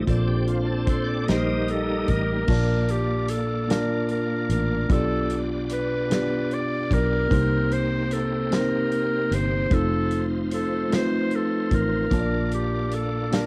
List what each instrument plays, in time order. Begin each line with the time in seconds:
0.06 fingered electric bass A#1, tine electric piano A#2 A#3 F4 A4, tonewheel organ C4 D4 A4, kick, closed hi-hat
0.10 tine electric piano D5
0.28 tonewheel organ G4
0.47 tonewheel organ F4, closed hi-hat
0.65 tonewheel organ A4
0.86 clarinet A4, tonewheel organ C5, kick, closed hi-hat
1.04 tonewheel organ D5
1.26 fingered electric bass A#1, tonewheel organ G3 A#3 D#4 D#5, tine electric piano A#3 D#4, snare, closed hi-hat
1.30 tine electric piano G4 D#5, clarinet C5
1.44 tonewheel organ D#5
1.68 clarinet A4, closed hi-hat
2.08 fingered electric bass A1, clarinet A#4, kick, closed hi-hat
2.47 fingered electric bass A#1, tine electric piano A#2 A#3 D4 F4 D5 A5, tonewheel organ A#3 D4 F4 C#5, kick, crash
2.55 tonewheel organ D5
2.89 clarinet G4, closed hi-hat
3.28 clarinet A4, closed hi-hat
3.68 tine electric piano A#3 D4 F4 D5 A5, clarinet A#4, snare, closed hi-hat
4.09 clarinet A#4, closed hi-hat
4.49 fingered electric bass A1, clarinet A#4, closed hi-hat
4.88 fingered electric bass B1, tine electric piano B2 B3 D4 F4 G4 D5, tonewheel organ B3 D4 F4 G4 D5, clarinet A4, kick, closed hi-hat
5.30 closed hi-hat
5.69 clarinet B4, closed hi-hat
6.10 tine electric piano B3 D4 F4 G4 D5, snare, closed hi-hat
6.51 clarinet D5, closed hi-hat
6.91 fingered electric bass B1, clarinet A#4, kick, closed hi-hat
7.29 fingered electric bass C2, tine electric piano C3 A#3 C4 D#4 G4 C5, tonewheel organ A#3 C4 D#4 G4 C5, kick, closed hi-hat
7.72 clarinet C5, closed hi-hat
8.11 clarinet A4, closed hi-hat
8.50 tine electric piano A#3 C4 D#4 G4 C5, clarinet A#4, snare, closed hi-hat
8.92 closed hi-hat
9.31 fingered electric bass G1, clarinet C5, closed hi-hat
9.69 fingered electric bass F1, tonewheel organ G#3 C4 D#4 F4 C5, tine electric piano A3 C4 D#4, kick, closed hi-hat
9.73 tonewheel organ F3, tine electric piano F4 C5, clarinet A4
10.11 closed hi-hat
10.51 clarinet A4, closed hi-hat
10.89 tine electric piano A3 C4 D#4 F4 B4, snare, closed hi-hat
10.94 clarinet C5
11.00 tine electric piano C5
11.31 closed hi-hat
11.35 clarinet A4
11.71 fingered electric bass A1, clarinet A#4, kick, closed hi-hat
12.10 fingered electric bass A#1, tine electric piano A#2 A#3 D4 F4 A5, tonewheel organ A#3 D4 F4 D5, kick, closed hi-hat
12.14 tine electric piano C#5
12.20 tine electric piano D5
12.51 clarinet G4, closed hi-hat
12.91 clarinet A4, closed hi-hat
13.31 tine electric piano A#3 D4 F4 D5 A5, clarinet A#4, snare, closed hi-hat